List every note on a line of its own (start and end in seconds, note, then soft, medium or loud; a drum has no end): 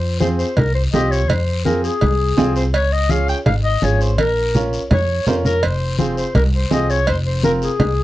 0.00 0.42 F2 loud
0.00 0.18 C5 medium
0.20 0.46 C4 medium
0.20 0.46 F4 medium
0.20 0.46 G#4 medium
0.20 0.28 C5 medium
0.20 high conga medium
0.20 short guiro medium
0.38 0.59 C5 medium
0.38 short guiro medium
0.57 0.86 C2 loud
0.57 0.74 A#4 medium
0.57 cowbell medium
0.57 high conga soft
0.57 low conga medium
0.57 long guiro medium
0.75 0.83 C5 medium
0.93 1.30 C2 medium
0.93 1.19 C4 medium
0.93 1.19 F4 medium
0.93 1.19 G4 medium
0.93 1.12 D#5 medium
0.93 high conga medium
0.93 low timbale medium
0.93 short guiro medium
1.11 1.30 C#5 loud
1.11 short guiro medium
1.29 1.87 F2 loud
1.29 1.65 C5 medium
1.29 cowbell loud
1.29 high conga soft
1.29 low conga medium
1.29 long guiro medium
1.65 1.91 C4 medium
1.65 1.91 F4 medium
1.65 1.91 G#4 medium
1.65 1.82 A#4 medium
1.65 high conga medium
1.65 short guiro medium
1.83 2.52 G#4 medium
1.83 short guiro medium
2.01 2.31 C2 loud
2.01 cowbell medium
2.01 high conga soft
2.01 low conga medium
2.01 long guiro medium
2.37 2.74 C2 medium
2.37 2.63 C4 medium
2.37 2.63 F4 medium
2.37 2.63 G#4 loud
2.37 high conga medium
2.37 low timbale medium
2.37 short guiro medium
2.56 2.64 C5 medium
2.56 short guiro medium
2.74 3.32 C#2 loud
2.74 2.94 C#5 loud
2.74 cowbell loud
2.74 high conga soft
2.74 long guiro medium
2.92 3.12 D#5 loud
3.09 3.35 C#4 medium
3.09 3.36 F4 medium
3.09 3.36 G#4 medium
3.09 3.28 F5 loud
3.09 high conga medium
3.09 short guiro medium
3.28 3.37 G5 loud
3.28 short guiro medium
3.46 3.75 G#1 medium
3.46 3.55 F5 loud
3.46 cowbell medium
3.46 high conga soft
3.46 low conga loud
3.46 long guiro medium
3.65 3.85 D#5 loud
3.82 4.18 G#1 medium
3.82 4.08 C#4 medium
3.82 4.08 F4 medium
3.82 4.08 G#4 medium
3.82 4.04 C#5 loud
3.82 high conga medium
3.82 short guiro medium
4.01 4.19 C5 medium
4.01 short guiro medium
4.18 4.76 A#1 loud
4.18 4.61 A#4 loud
4.18 cowbell loud
4.18 high conga medium
4.18 long guiro medium
4.55 4.80 C#4 medium
4.55 4.80 F4 medium
4.55 4.80 A#4 medium
4.55 low conga medium
4.55 short guiro medium
4.73 short guiro medium
4.91 5.20 F2 loud
4.91 5.25 C#5 loud
4.91 cowbell medium
4.91 low conga loud
4.91 long guiro medium
5.27 5.65 F2 medium
5.27 5.52 C#4 medium
5.27 5.52 F4 medium
5.27 5.52 A#4 medium
5.27 5.35 C5 medium
5.27 low conga medium
5.27 low timbale medium
5.27 short guiro medium
5.45 5.65 A#4 loud
5.45 low conga medium
5.45 short guiro medium
5.63 6.21 F1 medium
5.63 5.98 C5 loud
5.63 cowbell loud
5.63 high conga soft
5.63 long guiro medium
5.99 6.24 C4 medium
5.99 6.24 F4 medium
5.99 6.25 G#4 medium
5.99 6.16 C5 medium
5.99 high conga medium
5.99 short guiro medium
6.17 6.34 C5 medium
6.17 short guiro medium
6.35 6.64 C2 loud
6.35 6.44 A#4 medium
6.35 cowbell medium
6.35 high conga soft
6.35 low conga medium
6.35 long guiro medium
6.55 6.71 C5 medium
6.71 7.09 C2 medium
6.71 6.96 C4 medium
6.71 6.96 F4 medium
6.71 6.97 G#4 medium
6.71 6.92 D#5 medium
6.71 high conga medium
6.71 low timbale medium
6.71 short guiro medium
6.90 7.08 C#5 loud
6.90 short guiro medium
7.07 7.65 F1 loud
7.07 7.17 C5 loud
7.07 cowbell loud
7.07 high conga soft
7.07 long guiro medium
7.26 7.43 C5 medium
7.43 7.69 C4 medium
7.43 7.69 F4 medium
7.43 7.69 A#4 medium
7.43 7.53 A#4 medium
7.43 high conga medium
7.43 short guiro medium
7.62 8.04 G#4 loud
7.62 short guiro medium
7.80 8.04 C2 loud
7.80 cowbell loud
7.80 high conga soft
7.80 low conga medium
7.80 long guiro medium